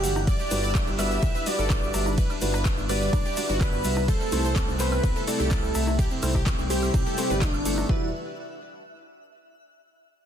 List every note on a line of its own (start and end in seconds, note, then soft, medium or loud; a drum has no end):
0.00 0.36 G1 loud
0.00 0.23 E3 medium
0.00 0.23 G3 medium
0.00 0.16 G3 medium
0.00 0.23 D4 medium
0.00 4.04 E4 medium
0.00 0.16 F#4 medium
0.00 0.23 G4 loud
0.00 7.90 E5 medium
0.00 0.16 F#5 loud
0.00 0.23 G5 medium
0.00 0.18 A5 loud
0.00 7.90 F#6 medium
0.00 open hi-hat loud
0.04 shaker loud
0.16 cowbell medium
0.16 high conga medium
0.16 shaker soft
0.27 7.85 G3 medium
0.27 4.05 D4 medium
0.27 4.05 B4 loud
0.27 0.36 D5 loud
0.27 0.90 D5 loud
0.27 0.90 D6 loud
0.27 kick loud
0.27 ride medium
0.27 high woodblock soft
0.27 shaker soft
0.40 0.48 G4 medium
0.40 shaker soft
0.51 0.83 G1 loud
0.51 0.64 G3 medium
0.51 0.64 F#4 medium
0.51 0.60 G4 medium
0.51 0.64 B4 loud
0.51 open hi-hat loud
0.51 high conga medium
0.51 shaker loud
0.64 0.72 D5 medium
0.64 shaker soft
0.75 0.84 G4 medium
0.75 kick loud
0.75 clap loud
0.75 ride medium
0.75 shaker medium
0.87 1.19 G1 medium
0.87 0.95 G4 medium
0.87 high conga medium
0.87 shaker soft
0.99 1.19 G3 medium
0.99 1.19 F#4 medium
0.99 1.19 B4 medium
0.99 1.07 D5 medium
0.99 1.48 E5 loud
0.99 1.48 E6 loud
0.99 clap soft
0.99 open hi-hat medium
0.99 high woodblock medium
0.99 shaker medium
1.11 1.19 G4 medium
1.11 shaker soft
1.23 1.32 G1 medium
1.23 1.31 G4 medium
1.23 kick loud
1.23 ride medium
1.23 high conga medium
1.23 shaker medium
1.35 1.43 B4 medium
1.35 shaker soft
1.46 1.91 G3 medium
1.46 1.91 F#4 medium
1.46 1.55 G4 medium
1.46 2.09 D5 loud
1.46 1.91 D5 loud
1.46 2.09 D6 loud
1.46 open hi-hat loud
1.46 shaker medium
1.59 1.90 G1 medium
1.59 2.09 A4 medium
1.59 high conga medium
1.59 high woodblock soft
1.59 shaker soft
1.70 kick loud
1.70 clap loud
1.70 ride medium
1.70 cowbell medium
1.70 shaker medium
1.83 shaker soft
1.94 2.26 G1 medium
1.94 2.07 G3 medium
1.94 2.07 F#4 medium
1.94 2.07 E5 medium
1.94 open hi-hat loud
1.94 cowbell medium
1.94 shaker loud
2.06 cowbell medium
2.06 high conga medium
2.06 shaker soft
2.18 2.26 B4 loud
2.18 kick loud
2.18 ride medium
2.18 shaker medium
2.30 2.38 D4 medium
2.30 high woodblock medium
2.30 shaker soft
2.41 2.74 G1 loud
2.41 2.55 G3 medium
2.41 2.50 D4 medium
2.41 2.55 F#4 medium
2.41 2.55 B4 loud
2.41 open hi-hat loud
2.41 high conga medium
2.41 shaker medium
2.54 2.62 B4 loud
2.54 cowbell medium
2.54 shaker soft
2.65 2.74 D4 medium
2.65 kick loud
2.65 clap loud
2.65 ride medium
2.65 shaker medium
2.78 3.09 G1 medium
2.78 2.86 D4 medium
2.78 high conga medium
2.78 shaker soft
2.89 3.09 G3 medium
2.89 3.09 F#4 medium
2.89 2.98 B4 loud
2.89 3.09 B4 loud
2.89 3.51 D5 loud
2.89 3.52 D6 loud
2.89 open hi-hat medium
2.89 high woodblock soft
2.89 shaker medium
3.02 3.10 D4 medium
3.02 shaker soft
3.13 3.23 G1 medium
3.13 3.22 D4 medium
3.13 kick loud
3.13 ride medium
3.13 cowbell medium
3.13 high conga medium
3.13 shaker soft
3.25 3.33 G4 medium
3.25 shaker soft
3.36 3.82 G3 medium
3.36 3.46 D4 medium
3.36 3.82 F#4 medium
3.36 3.82 D5 loud
3.36 open hi-hat loud
3.36 shaker medium
3.49 3.81 G1 medium
3.49 3.99 F#4 medium
3.49 high conga medium
3.49 shaker soft
3.61 4.04 B4 medium
3.61 4.04 B5 loud
3.61 kick loud
3.61 clap loud
3.61 ride medium
3.61 high woodblock medium
3.61 shaker soft
3.73 shaker soft
3.84 4.17 C2 medium
3.84 3.97 G3 medium
3.84 3.97 F#4 medium
3.84 3.97 E5 medium
3.84 open hi-hat medium
3.84 shaker loud
3.96 cowbell medium
3.96 high conga medium
3.96 shaker soft
4.08 7.86 C3 medium
4.08 7.86 A3 medium
4.08 7.85 E4 medium
4.08 4.71 A4 loud
4.08 4.17 C5 loud
4.08 4.71 A5 loud
4.08 kick loud
4.08 ride medium
4.08 shaker medium
4.21 4.29 C4 medium
4.21 high woodblock soft
4.21 shaker soft
4.32 4.64 C2 loud
4.32 4.45 A3 medium
4.32 4.41 C4 medium
4.32 4.45 E4 medium
4.32 4.45 C5 loud
4.32 open hi-hat loud
4.32 high conga medium
4.32 shaker medium
4.45 4.53 C5 loud
4.45 shaker soft
4.56 4.65 C4 medium
4.56 kick loud
4.56 clap loud
4.56 ride medium
4.56 shaker medium
4.68 5.00 C2 medium
4.68 4.76 C4 medium
4.68 high conga medium
4.68 shaker soft
4.79 5.00 A3 medium
4.79 5.00 E4 medium
4.79 5.23 B4 medium
4.79 4.88 C5 medium
4.79 5.00 C5 loud
4.79 5.23 B5 medium
4.79 clap soft
4.79 open hi-hat medium
4.79 shaker loud
4.92 5.00 C4 medium
4.92 high woodblock medium
4.92 shaker soft
5.04 5.13 C2 medium
5.04 5.12 C4 medium
5.04 kick loud
5.04 ride medium
5.04 high conga loud
5.04 shaker soft
5.16 5.24 A4 medium
5.16 shaker soft
5.27 5.72 A3 medium
5.27 5.36 C4 medium
5.27 5.72 E4 medium
5.27 5.90 A4 loud
5.27 5.72 D5 loud
5.27 5.90 A5 loud
5.27 open hi-hat loud
5.27 shaker medium
5.40 5.71 C2 medium
5.40 5.90 G4 medium
5.40 high conga medium
5.40 shaker soft
5.51 kick loud
5.51 clap loud
5.51 ride medium
5.51 cowbell medium
5.51 high woodblock soft
5.51 shaker medium
5.64 shaker soft
5.75 6.07 C2 medium
5.75 5.88 A3 medium
5.75 5.88 E4 medium
5.75 5.88 E5 loud
5.75 open hi-hat medium
5.75 cowbell medium
5.75 shaker medium
5.87 cowbell medium
5.87 high conga loud
5.87 shaker soft
5.99 6.07 G4 loud
5.99 kick loud
5.99 ride medium
5.99 shaker medium
6.11 6.19 C4 medium
6.11 shaker soft
6.23 6.55 C2 loud
6.23 6.36 A3 medium
6.23 6.31 C4 medium
6.23 6.36 E4 medium
6.23 6.35 C5 loud
6.23 open hi-hat loud
6.23 high conga loud
6.23 high woodblock medium
6.23 shaker loud
6.35 6.43 G4 loud
6.35 kick medium
6.35 cowbell medium
6.35 shaker soft
6.46 6.55 C4 medium
6.46 kick loud
6.46 clap loud
6.46 ride medium
6.46 shaker soft
6.59 6.90 C2 medium
6.59 6.67 C4 medium
6.59 high conga medium
6.59 shaker soft
6.70 6.90 A3 medium
6.70 6.90 E4 medium
6.70 7.43 G4 loud
6.70 6.79 G4 medium
6.70 6.90 C5 loud
6.70 7.43 G5 loud
6.70 open hi-hat medium
6.70 shaker medium
6.82 6.91 C4 medium
6.82 high woodblock soft
6.82 shaker soft
6.94 7.04 C2 medium
6.94 7.03 C4 medium
6.94 kick loud
6.94 ride medium
6.94 cowbell medium
6.94 high conga loud
6.94 shaker medium
7.06 7.14 A4 medium
7.06 shaker soft
7.18 7.28 A3 loud
7.18 7.26 C4 medium
7.18 7.28 E4 medium
7.18 7.28 C5 loud
7.18 open hi-hat loud
7.18 shaker medium
7.30 7.62 G1 medium
7.30 7.50 A3 medium
7.30 7.50 E4 medium
7.30 7.80 B4 medium
7.30 7.50 D5 medium
7.30 high conga medium
7.30 shaker soft
7.42 7.85 D4 loud
7.42 7.85 D5 loud
7.42 kick loud
7.42 clap loud
7.42 ride medium
7.42 shaker medium
7.54 high woodblock medium
7.54 shaker soft
7.65 7.85 G1 medium
7.65 7.86 A3 medium
7.65 7.86 E4 medium
7.65 7.86 A4 medium
7.65 open hi-hat medium
7.65 shaker loud
7.78 cowbell medium
7.78 high conga loud
7.78 shaker soft
7.89 8.11 E1 loud
7.89 8.07 G3 medium
7.89 8.07 E4 medium
7.89 8.07 F#4 medium
7.89 8.07 B4 medium
7.89 8.07 D5 loud
7.89 8.07 E5 medium
7.89 kick loud